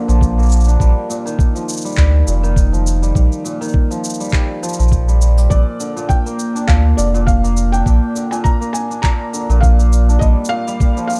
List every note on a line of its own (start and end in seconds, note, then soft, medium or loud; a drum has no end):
0.00 0.85 D3 medium
0.00 0.37 A#3 medium
0.00 0.67 D4 medium
0.08 0.77 A#1 medium
0.08 0.85 F3 medium
0.08 cabasa soft
0.21 kick medium
0.21 cabasa soft
0.38 4.67 A#3 medium
0.38 cabasa soft
0.43 cabasa soft
0.46 cabasa soft
0.49 cabasa soft
0.52 cabasa medium
0.56 cabasa soft
0.60 cabasa soft
0.64 1.32 D4 medium
0.64 cabasa soft
0.69 cabasa soft
0.80 0.94 A#1 loud
0.80 1.29 G3 medium
0.80 kick loud
0.80 cabasa soft
1.09 1.29 A#2 medium
1.09 cabasa medium
1.26 2.32 D#3 medium
1.26 cabasa soft
1.39 kick loud
1.39 cabasa soft
1.55 2.47 F3 medium
1.55 cabasa soft
1.69 cabasa medium
1.73 cabasa medium
1.77 cabasa medium
1.81 1.96 G3 medium
1.81 cabasa soft
1.86 cabasa soft
1.89 cabasa soft
1.92 cabasa soft
1.95 2.23 D2 medium
1.95 2.47 G3 medium
1.95 kick loud
1.95 clap medium
1.95 cabasa soft
1.98 cabasa soft
2.27 3.12 F1 medium
2.27 2.47 A#2 medium
2.27 cabasa medium
2.43 3.50 D#3 loud
2.43 cabasa soft
2.56 kick loud
2.56 cabasa soft
2.73 3.65 F3 medium
2.73 cabasa soft
2.87 cabasa medium
3.02 3.14 G3 medium
3.02 cabasa soft
3.15 3.29 A#1 medium
3.15 3.65 G3 medium
3.15 kick loud
3.15 cabasa soft
3.32 cabasa soft
3.44 3.65 A#2 medium
3.44 cabasa medium
3.61 5.56 D#3 medium
3.61 cabasa soft
3.64 cabasa soft
3.68 cabasa soft
3.71 kick loud
3.71 cabasa soft
3.91 4.62 F3 medium
3.91 cabasa soft
4.04 cabasa medium
4.10 cabasa medium
4.14 cabasa soft
4.20 4.32 G3 medium
4.20 cabasa soft
4.24 cabasa soft
4.30 5.07 G3 medium
4.30 kick loud
4.30 clap medium
4.30 cabasa soft
4.34 cabasa soft
4.63 4.78 F3 medium
4.63 cabasa medium
4.69 cabasa medium
4.73 cabasa medium
4.79 5.48 A#1 medium
4.79 5.56 F3 medium
4.79 cabasa soft
4.83 cabasa soft
4.88 kick medium
4.88 cabasa soft
4.92 cabasa soft
5.08 5.20 G3 medium
5.08 cabasa soft
5.22 5.37 G3 medium
5.22 cabasa medium
5.38 5.56 G3 medium
5.38 cabasa soft
5.50 5.65 A#1 medium
5.50 5.85 A#2 medium
5.50 6.05 D5 medium
5.50 kick loud
5.50 cabasa soft
5.80 6.00 D3 medium
5.80 cabasa medium
5.96 6.67 A#2 medium
5.96 cabasa soft
6.09 6.64 G5 loud
6.09 kick loud
6.09 cabasa soft
6.26 7.43 A#3 medium
6.26 cabasa soft
6.39 cabasa medium
6.55 7.73 D4 medium
6.55 cabasa soft
6.67 6.94 D2 medium
6.67 7.03 A#2 medium
6.67 6.98 F5 medium
6.67 kick loud
6.67 clap medium
6.67 cabasa soft
6.97 7.83 F1 medium
6.97 7.18 D3 medium
6.97 7.25 D5 medium
6.97 cabasa medium
7.14 7.85 A#2 medium
7.14 cabasa soft
7.27 7.74 F5 medium
7.27 kick loud
7.27 cabasa soft
7.44 8.61 A#3 medium
7.44 cabasa soft
7.57 cabasa medium
7.72 8.90 D4 medium
7.72 8.33 G5 loud
7.72 cabasa soft
7.86 8.00 A#1 medium
7.86 8.21 A#2 medium
7.86 kick medium
7.86 cabasa soft
8.15 8.35 D3 medium
8.15 cabasa medium
8.31 9.02 A#2 medium
8.31 8.36 G#5 medium
8.31 cabasa soft
8.44 8.75 A#5 loud
8.44 kick loud
8.44 cabasa soft
8.61 9.78 A#3 medium
8.61 cabasa soft
8.73 9.01 G#5 medium
8.73 cabasa medium
8.90 10.08 D4 medium
8.90 cabasa soft
9.02 9.38 A#2 medium
9.02 9.58 A#5 loud
9.02 kick medium
9.02 clap medium
9.02 cabasa soft
9.33 9.53 D3 medium
9.33 cabasa medium
9.49 10.18 A#1 medium
9.49 10.27 A#2 medium
9.49 cabasa soft
9.61 10.16 F5 medium
9.61 kick medium
9.61 cabasa soft
9.79 11.20 A#3 medium
9.79 cabasa soft
9.93 cabasa medium
10.09 11.20 D4 medium
10.09 cabasa soft
10.19 10.35 A#1 medium
10.19 10.66 G3 medium
10.19 10.26 D#5 loud
10.19 kick medium
10.19 cabasa soft
10.45 cabasa medium
10.49 11.20 A#2 medium
10.49 11.06 F5 loud
10.67 11.20 G3 loud
10.67 cabasa soft
10.80 kick loud
10.80 cabasa soft
10.97 11.20 F3 medium
10.97 cabasa soft
11.08 11.20 F5 loud
11.08 cabasa soft
11.13 cabasa soft
11.15 cabasa soft